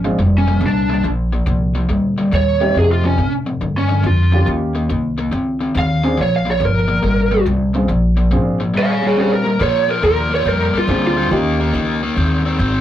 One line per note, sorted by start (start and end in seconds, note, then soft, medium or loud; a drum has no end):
0.00 0.17 G#1 medium
0.04 0.17 A#2 medium
0.04 0.17 F3 medium
0.04 0.17 G#3 medium
0.04 0.17 C4 medium
0.04 0.17 D4 medium
0.04 0.17 F4 medium
0.18 0.60 F1 medium
0.18 0.44 A#2 medium
0.18 0.45 G3 medium
0.38 0.63 C#4 medium
0.48 0.60 A#2 medium
0.48 0.60 G3 medium
0.60 1.02 C2 medium
0.60 0.87 A#2 medium
0.60 0.87 G3 medium
0.66 1.05 D4 medium
0.90 1.02 A#2 medium
0.90 1.03 G3 medium
1.04 1.46 A#1 medium
1.04 1.30 A#2 medium
1.04 1.30 F3 medium
1.32 1.45 A#2 medium
1.32 1.46 F3 medium
1.46 1.88 C2 medium
1.46 1.72 A#2 medium
1.46 1.73 F3 medium
1.75 1.88 A#2 medium
1.75 1.88 F3 medium
1.89 2.31 D2 medium
1.89 2.15 A#2 medium
1.89 2.15 G3 medium
2.18 2.30 A#2 medium
2.18 2.31 G3 medium
2.32 2.74 D#2 medium
2.32 2.58 A#2 medium
2.32 2.58 G3 medium
2.32 2.75 C#5 medium
2.60 2.74 A#2 medium
2.60 2.74 G3 medium
2.60 3.15 A3 medium
2.60 3.15 C4 medium
2.60 3.15 D#4 medium
2.60 3.15 G4 medium
2.74 3.01 F2 medium
2.74 3.17 F2 medium
2.74 3.01 C3 medium
2.78 2.91 G#4 medium
2.92 3.05 F4 medium
3.04 3.17 F2 medium
3.04 3.17 C3 medium
3.04 3.32 C#4 medium
3.18 3.44 F2 medium
3.18 3.60 A2 medium
3.18 3.44 C3 medium
3.46 3.59 F2 medium
3.46 3.60 C3 medium
3.61 3.87 F2 medium
3.61 4.03 G2 medium
3.61 3.87 D3 medium
3.78 4.04 C#4 medium
3.89 4.02 F2 medium
3.89 4.02 D3 medium
4.03 4.29 F2 medium
4.03 4.45 F2 medium
4.03 4.30 D3 medium
4.03 4.47 F4 medium
4.32 4.45 F2 medium
4.32 4.45 D3 medium
4.32 4.87 A#3 medium
4.32 4.87 C#4 medium
4.32 4.87 F4 medium
4.32 4.87 G4 medium
4.46 4.88 D#2 medium
4.46 4.72 D#3 medium
4.46 4.72 A#3 medium
4.75 4.88 D#3 medium
4.75 4.88 A#3 medium
4.90 5.31 C2 medium
4.90 5.15 D#3 medium
4.90 5.16 A#3 medium
5.18 5.30 D#3 medium
5.18 5.31 A#3 medium
5.32 5.74 C#2 medium
5.32 5.58 D#3 medium
5.32 5.58 C4 medium
5.60 5.73 D#3 medium
5.60 5.74 C4 medium
5.75 6.17 D#2 loud
5.75 6.01 D#3 medium
5.75 6.01 C4 medium
5.75 6.18 F5 loud
6.04 6.16 D#3 medium
6.04 6.17 C4 medium
6.04 6.17 D4 medium
6.04 6.17 F4 medium
6.04 6.17 G#4 medium
6.17 6.59 A#1 medium
6.17 6.44 A#2 medium
6.17 6.44 F3 medium
6.17 6.34 C#5 medium
6.36 6.48 F5 medium
6.45 6.59 A#2 medium
6.45 6.59 F3 medium
6.51 6.65 C#5 medium
6.60 7.02 G1 medium
6.60 6.86 A#2 medium
6.60 6.86 F3 medium
6.65 7.46 A#4 medium
6.88 7.01 A#2 medium
6.88 7.02 F3 medium
7.02 7.45 G#1 medium
7.02 7.29 A#2 medium
7.02 7.29 G3 medium
7.31 7.44 A#2 medium
7.31 7.45 G3 loud
7.46 7.88 C2 loud
7.46 7.72 A#2 medium
7.46 7.72 G3 loud
7.74 7.87 A#2 medium
7.74 7.88 G3 medium
7.74 7.88 C4 medium
7.74 7.88 D4 medium
7.74 7.88 F4 medium
7.74 7.88 G#4 medium
7.88 8.31 A#1 medium
7.88 8.14 A#2 medium
7.88 8.15 F3 medium
8.17 8.30 A#2 medium
8.17 8.30 F3 medium
8.31 8.73 G#1 medium
8.31 8.57 A#2 medium
8.31 8.57 F3 medium
8.31 8.58 C4 medium
8.31 8.58 D4 medium
8.31 8.58 F4 medium
8.31 8.58 G#4 medium
8.60 8.73 A#2 medium
8.60 8.73 F3 medium
8.74 9.00 A#2 medium
8.74 9.00 G3 medium
8.78 8.91 C#5 medium
8.78 8.90 F5 medium
8.92 9.04 C#5 medium
8.92 9.05 F5 medium
9.02 9.15 A#2 medium
9.02 9.15 G3 medium
9.07 9.19 G#4 medium
9.07 9.19 C#5 medium
9.16 9.43 A#2 medium
9.16 9.43 G3 loud
9.16 9.43 C4 medium
9.16 9.43 D4 medium
9.16 9.43 F4 medium
9.16 9.43 G4 medium
9.20 9.32 G#4 medium
9.20 9.33 C#5 medium
9.34 9.60 A#4 medium
9.44 9.58 A#2 medium
9.44 9.58 G3 medium
9.59 9.86 A#2 medium
9.59 10.02 A#2 medium
9.59 9.86 F3 loud
9.59 9.89 C#5 medium
9.88 10.01 A#2 medium
9.88 10.01 F3 medium
9.88 10.04 A#4 medium
10.02 10.44 D#2 medium
10.02 10.28 A#2 medium
10.02 10.29 F3 medium
10.02 10.32 A#4 medium
10.30 10.44 A#2 medium
10.30 10.44 F3 medium
10.35 10.47 C#5 medium
10.45 10.72 F2 medium
10.45 10.71 A#2 medium
10.45 10.71 G3 medium
10.45 10.75 A#4 medium
10.73 10.87 A#2 medium
10.73 10.87 G3 medium
10.73 muted upright bass stroke soft
10.78 11.04 F4 loud
10.88 11.30 D2 loud
10.88 11.14 A#2 medium
10.88 11.14 G3 medium
10.88 11.30 A#3 medium
10.88 11.31 C4 medium
10.88 11.31 D4 medium
10.88 11.30 F4 medium
10.88 11.31 G#4 medium
11.07 11.28 F4 medium
11.17 11.30 A#2 medium
11.17 11.30 G3 medium
11.31 11.73 D#2 medium
11.31 11.57 D#3 medium
11.31 11.97 A#3 medium
11.31 11.57 A#3 loud
11.31 11.97 C#4 medium
11.31 11.97 D#4 medium
11.31 11.97 F4 medium
11.31 11.97 G4 medium
11.60 11.72 D#3 medium
11.60 11.73 A#3 medium
11.74 12.15 C#2 medium
11.74 12.00 D#3 medium
11.74 12.00 A#3 medium
12.03 12.15 D#3 medium
12.03 12.15 A#3 medium
12.16 12.58 D#2 medium
12.16 12.42 D#3 medium
12.16 12.42 C4 medium
12.45 12.58 D#3 medium
12.45 12.58 C4 medium
12.59 12.81 G#1 loud
12.59 12.81 D#3 medium
12.59 12.81 C4 loud